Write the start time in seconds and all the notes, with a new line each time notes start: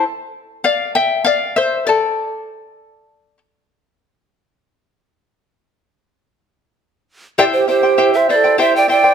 0.64 D5 F5
0.95 E5 G5
1.25 D5 F5
1.56 C5 E5
1.87 A4 D5
7.38 E4 G4 C5 D5 E5 G5
7.53 G4 C5
7.68 E4 G4 C5 E5 G5
7.83 E4 C5 G5
7.98 E4 G4 C5 E5 G5
8.13 C5 E5
8.29 E4 B4 C5 D5 E5 G5
8.36 A4
8.44 E4 C5 G5
8.58 E4 G4 C5 E5 G5
8.76 D5 G5
8.88 E4 C5 D5 E5 G5
9.04 E4 C5 G5